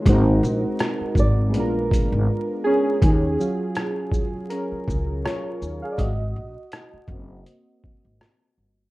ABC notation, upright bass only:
X:1
M:4/4
L:1/16
Q:"Swing 16ths" 1/4=81
K:Ebdor
V:1 name="Upright bass" clef=bass
A,,,2 z4 A,,,2 B,,,3 A,,, z4 | E,,2 z8 D,,2 z2 E,, z | A,,,2 B,,, z3 G,,,2 z3 A,,, z2 =G,,,2 |]